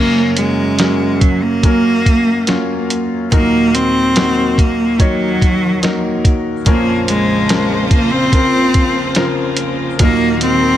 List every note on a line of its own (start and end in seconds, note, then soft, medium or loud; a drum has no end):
0.00 1.63 F#2 medium
0.00 3.27 F#2 soft
0.00 1.63 C#3 medium
0.00 3.28 C#3 soft
0.00 0.75 F#3 medium
0.00 1.63 F#3 medium
0.00 0.34 A#3 medium
0.00 0.75 A#3 soft
0.00 1.63 A#3 medium
0.00 0.75 C#4 medium
0.00 1.64 C#4 medium
0.00 1.65 F#4 medium
0.00 0.75 A#4 medium
0.37 1.23 G#3 medium
0.37 closed hi-hat medium
0.79 1.59 F#3 medium
0.79 1.60 A#3 soft
0.79 1.60 C#4 medium
0.79 1.60 A#4 medium
0.79 snare medium
0.79 closed hi-hat medium
1.21 1.45 F#3 medium
1.21 kick medium
1.21 closed hi-hat medium
1.43 2.90 A#3 medium
1.63 2.46 F#3 soft
1.63 2.44 F#3 medium
1.63 2.47 A#3 soft
1.63 2.44 A#3 medium
1.63 2.44 C#4 medium
1.63 2.47 C#4 soft
1.63 2.49 F#4 soft
1.63 2.44 A#4 medium
1.63 kick medium
1.63 closed hi-hat medium
2.06 kick medium
2.06 closed hi-hat soft
2.47 3.30 F#3 medium
2.47 3.27 F#3 medium
2.47 3.31 A#3 soft
2.47 3.28 A#3 medium
2.47 3.28 C#4 medium
2.47 3.32 C#4 medium
2.47 3.28 F4 medium
2.47 3.32 F#4 medium
2.47 snare medium
2.47 closed hi-hat medium
2.90 closed hi-hat medium
3.31 6.63 D#2 medium
3.31 6.63 A#2 soft
3.31 4.13 D#3 medium
3.31 4.12 F#3 medium
3.31 4.15 A#3 medium
3.31 4.12 A#3 medium
3.31 3.76 A#3 medium
3.31 4.15 D#4 medium
3.31 4.12 D#4 medium
3.31 4.15 F#4 medium
3.31 4.12 A#4 medium
3.31 kick medium
3.31 closed hi-hat medium
3.74 4.61 C4 medium
3.74 closed hi-hat medium
4.15 4.97 D#3 soft
4.15 4.96 F#3 medium
4.15 4.98 A#3 soft
4.15 4.96 A#3 medium
4.15 4.99 D#4 soft
4.15 4.96 D#4 medium
4.15 5.00 F#4 medium
4.15 4.97 F#4 medium
4.15 snare loud
4.15 closed hi-hat medium
4.58 5.02 A#3 medium
4.58 kick medium
4.58 closed hi-hat medium
4.98 5.81 D#3 medium
4.98 5.79 F#3 medium
4.98 6.25 F#3 medium
4.98 5.83 A#3 soft
4.98 5.79 A#3 medium
4.98 5.79 D#4 medium
4.98 5.83 D#4 soft
4.98 5.83 F#4 medium
4.98 5.79 C#5 medium
4.98 kick medium
4.98 closed hi-hat medium
5.42 kick medium
5.42 closed hi-hat soft
5.82 6.65 D#3 medium
5.82 6.62 F#3 medium
5.82 6.62 A#3 medium
5.82 6.66 A#3 soft
5.82 6.62 D#4 medium
5.82 6.67 D#4 medium
5.82 6.67 F#4 medium
5.82 6.63 A#4 medium
5.82 snare medium
5.82 closed hi-hat medium
6.25 kick medium
6.25 closed hi-hat medium
6.65 9.96 A#1 medium
6.65 9.96 F2 medium
6.65 8.32 A#2 medium
6.65 9.96 C#3 medium
6.65 8.31 F3 medium
6.65 7.45 F3 medium
6.65 9.96 A#3 medium
6.65 7.05 A#3 medium
6.65 8.32 C4 medium
6.65 7.46 C4 medium
6.65 7.46 C#4 medium
6.65 8.34 C#4 medium
6.65 9.96 F4 medium
6.65 7.46 A#4 medium
6.65 9.96 C5 medium
6.65 kick medium
6.65 closed hi-hat medium
6.69 8.33 F4 medium
7.08 7.88 G#3 medium
7.08 closed hi-hat medium
7.49 8.29 F3 medium
7.49 8.29 C4 medium
7.49 8.29 C#4 medium
7.49 8.29 A#4 medium
7.49 snare loud
7.49 closed hi-hat medium
7.91 8.13 A#3 medium
7.91 kick medium
7.91 closed hi-hat medium
8.12 9.58 C4 loud
8.32 9.12 C#3 medium
8.32 9.14 F3 medium
8.32 9.12 F3 medium
8.32 9.15 C4 medium
8.32 9.17 F4 medium
8.32 9.13 A#4 medium
8.32 9.12 C5 medium
8.32 kick medium
8.32 closed hi-hat medium
8.74 kick medium
8.74 closed hi-hat medium
9.15 9.96 C#3 medium
9.15 9.99 F3 medium
9.15 9.95 F3 medium
9.15 9.96 C4 medium
9.15 10.00 C4 medium
9.15 10.01 F4 medium
9.15 9.96 A#4 medium
9.15 snare medium
9.15 closed hi-hat medium
9.57 closed hi-hat medium
9.99 10.77 D#2 medium
9.99 10.77 A#2 medium
9.99 10.77 D#3 medium
9.99 10.77 F#3 medium
9.99 10.77 A#3 medium
9.99 10.39 A#3 loud
9.99 10.77 A#3 medium
9.99 10.77 D#4 medium
9.99 10.77 F#4 medium
9.99 10.77 A#4 medium
9.99 kick medium
9.99 closed hi-hat medium
10.41 10.77 C4 loud
10.41 closed hi-hat medium